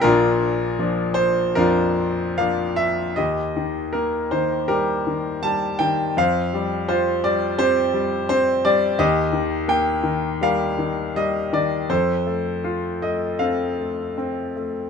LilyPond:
<<
  \new Staff \with { instrumentName = "Grand piano" } { \time 4/4 \key bes \lydian \tempo 4 = 81 << { bes'4 r8 c''8 bes'4 f''8 e''8 | \key ees \lydian ees''4 bes'8 c''8 bes'4 a''8 g''8 | f''4 c''8 d''8 c''4 c''8 d''8 | ees''4 g''4 f''4 ees''8 d''8 |
c''4. ees''8 f''4. r8 | } \\ { <d' f'>2 <d' f'>2 | g'2 g'2 | c''2 g'2 | g'2 bes'2 |
a'2 a'2 | } >> }
  \new Staff \with { instrumentName = "Grand piano" } { \clef bass \time 4/4 \key bes \lydian <bes,, bes,>4 <f bes d'>4 f,4 <f bes d'>4 | \key ees \lydian ees,8 ees8 bes8 ees8 g8 ees8 g8 ees8 | f,8 g8 f'8 g8 c'8 g8 c'8 g8 | ees,8 ees8 bes8 ees8 g8 ees8 g8 ees8 |
f,8 a8 f'8 a8 c'8 a8 c'8 a8 | }
>>